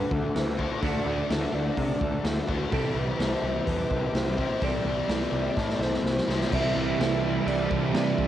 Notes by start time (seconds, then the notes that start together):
Already playing: D3 A3 D4 F#4 A4 B4 E5 F#5 D6
0.10 D2 A4, kick
0.34 D2 F#4 C5, snare, open hi-hat
0.57 D3 A3 D4 F#4 B4, kick
0.81 D2 D3 A3 D4 F#4 A4, kick, open hi-hat
0.85 D5
1.05 D2 B4
1.29 D2 A4 E5, snare, open hi-hat
1.53 D2 F#4 D5
1.77 C3 A4, kick, open hi-hat
2.00 D2 A4, kick
2.24 D2 F#4, snare, open hi-hat
2.47 D2 D3 A3 D4 F#4 B4, kick
2.70 C2 C3 E3 G3 C4 E4 G4 A4 E5 G5 D6, kick, open hi-hat
2.95 C2 B4
3.18 C2 A4 C5, snare, open hi-hat
3.42 C2 G4
3.66 E2 A4 B4, kick, open hi-hat
3.90 C2 A4, kick
4.13 C2 G4 C5, snare, open hi-hat
4.37 C3 E3 G3 C4 E4 C5, kick
4.60 C2 C3 E3 G3 C4 E4 A4, kick, open hi-hat
4.64 G4 D5
4.84 C2 B4
5.08 C2 A4, snare, open hi-hat
5.32 C2 G4
5.57 A2 A4, kick, snare
5.69 snare
5.79 C2 A4 C5, snare
5.94 snare
6.02 C2 G4, snare
6.17 snare
6.26 C2 C3 E3 G3 C4 E4 C5, snare
6.41 snare
6.50 C2 C3 E3 G3 C4 A4 C5 E5 G5 E6, kick, crash
6.54 E4
6.75 C2 B4
6.99 C2 E3 G3 C4 A4, snare, crash
7.03 E4
7.22 C3 G3 C4 G4
7.46 C2 C3 E3 G3 C4 E4 A4 D5, crash
7.69 C2 G3 C4 E4 A4, kick
7.94 C3 E3 G3 C4 E4 G4, snare, crash
8.18 C2 C5, kick